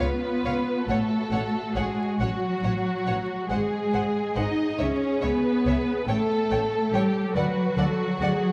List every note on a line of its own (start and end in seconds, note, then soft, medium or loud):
0.00 0.88 B3 medium
0.00 0.86 F4 soft
0.00 0.88 B4 medium
0.44 0.52 C#2 soft
0.44 0.53 C#5 soft
0.44 0.54 F5 soft
0.87 0.97 A1 soft
0.87 1.74 A3 medium
0.87 3.48 F#4 medium
0.87 1.75 A4 medium
0.87 0.98 C#5 soft
0.87 0.97 F#5 soft
1.31 1.39 A1 soft
1.31 1.40 C#5 soft
1.31 1.40 F#5 soft
1.75 1.83 A1 soft
1.75 2.20 G#3 medium
1.75 2.20 G#4 soft
1.75 1.84 C#5 soft
1.75 1.84 F#5 soft
2.19 2.27 A1 soft
2.19 3.52 F#3 medium
2.19 3.49 F#4 medium
2.19 2.29 C#5 soft
2.19 2.29 F#5 soft
2.63 2.71 A1 soft
2.63 2.72 C#5 soft
2.63 2.71 F#5 soft
3.06 3.15 A1 soft
3.06 3.15 C#5 soft
3.06 3.14 F#5 soft
3.50 3.58 G#1 soft
3.50 4.36 G#3 medium
3.50 4.35 G#4 medium
3.50 4.78 G#4 medium
3.50 3.58 C5 soft
3.50 3.58 F#5 soft
3.94 4.02 G#1 soft
3.94 4.02 C5 soft
3.94 4.02 F#5 soft
4.36 4.44 G#1 soft
4.36 4.80 D#4 medium
4.36 4.44 C5 soft
4.36 4.80 D#5 medium
4.36 4.44 F#5 soft
4.79 4.87 C#2 soft
4.79 5.23 C#4 medium
4.79 6.07 G#4 medium
4.79 4.87 C#5 soft
4.79 5.24 C#5 soft
4.79 4.87 E5 soft
5.22 5.30 C#2 soft
5.22 6.09 B3 medium
5.22 6.09 B4 medium
5.22 5.30 C#5 soft
5.22 5.30 E5 soft
5.65 5.73 C#2 soft
5.65 5.74 C#5 soft
5.65 5.75 E5 soft
6.08 6.16 A1 soft
6.08 6.91 A3 medium
6.08 6.91 A4 medium
6.08 7.32 A4 medium
6.08 6.16 C#5 soft
6.08 6.17 G5 soft
6.50 6.58 A1 soft
6.50 6.60 C#5 soft
6.50 6.59 G5 soft
6.92 7.01 A1 soft
6.92 7.34 G3 medium
6.92 7.34 G4 medium
6.92 7.02 C#5 soft
6.92 7.02 G5 soft
7.34 7.42 D2 medium
7.34 8.52 F#3 medium
7.34 8.52 F#4 medium
7.34 7.77 B4 medium
7.34 7.44 D5 soft
7.34 7.44 F#5 soft
7.76 7.84 D2 medium
7.76 8.20 A4 medium
7.76 7.86 D5 soft
7.76 7.85 F#5 soft
8.20 8.28 D2 soft
8.20 8.52 G#4 medium
8.20 8.30 D5 soft
8.20 8.30 F#5 soft